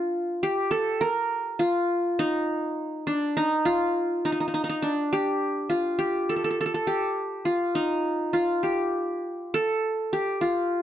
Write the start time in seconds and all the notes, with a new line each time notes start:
Already playing: D4 F4
0.43 G4
0.71 A4
1.01 A#4
1.59 F4
2.19 D#4
3.07 D4
3.37 D#4
3.65 F4
4.25 D#4
4.32 D#4
4.40 D#4
4.48 D#4
4.54 D#4
4.64 D#4
4.69 D#4
4.82 D4
5.13 G4
5.70 F4
5.99 G4
6.29 A4
6.36 A4
6.44 A4
6.51 A4
6.61 A4
6.66 A4
6.74 A4
6.87 G4
7.45 F4
7.75 D#4
8.33 F4
8.63 G4
9.54 A4
10.13 G4
10.41 F4